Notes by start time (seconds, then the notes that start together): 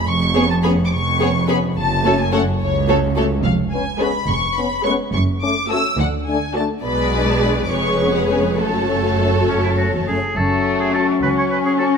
0.07 F1 F2 C#6
0.35 B3 C#4 G#4 C#5
0.50 A5
0.63 B3 C#4 G#4 C#5 B5
0.85 D6
0.91 F1 F2 C#6
1.19 B3 C#4 G#4 C#5
1.47 B3 C#4 G#4 C#5 B5
1.76 F#1 F#2 A5
2.04 A3 C#4 F#4 A4 C#5
2.19 G#5
2.32 A3 C#4 F#4 A4 C#5 F#5
2.60 C#2 C#5
2.88 A3 C#4 F#4 A4 C#5
3.16 A3 C#4 F#4 A4 C#5
3.44 F1 F2 F5
3.72 B3 C#4 G#5
4.00 G#3 B3 C#4 G#4 B4 C#5 B5
4.28 F1 F2 C#6
4.56 B3 C#4 B5
4.84 G#3 B3 C#4 G#4 B4 C#5 C#6
5.14 F#1 F#2 C#6
5.41 A3 C#4 D6
5.70 A3 C#4 F#4 A4 C#5 E6
5.99 D2 D3 F#5
6.28 A3 D4 G#5
6.55 A3 D4 F#4 A4 D5 A5
6.83 B1 B2 G#3 G#4 B4 D5 B5
7.13 G#3 D4
7.29 A5
7.42 G#3 D4 B5
7.63 D6
7.70 F1 F2 G#3 G#4 B4 C#5 C#6
8.01 B3 C#4
8.16 F#5
8.30 B3 C#4 G#5
8.59 F#1 F#2 A3 F#4 A4 C#5 A5
8.89 A3 C#4
9.21 A3 C#4
9.48 F#2 C#4
9.63 E4
9.77 A3 C#4 F#4
9.94 E2
10.08 F#2 A3 C#4 G#4
10.37 F#1 F#2 F#3 A3 C#4 A4 C#6
10.80 G#4
10.94 C#4 F#4 A4 C#6
11.22 C#2 C#4 B4
11.38 C#5
11.52 B4
11.66 G#4
11.79 C#4 F#4 A4 C#6
11.94 F#4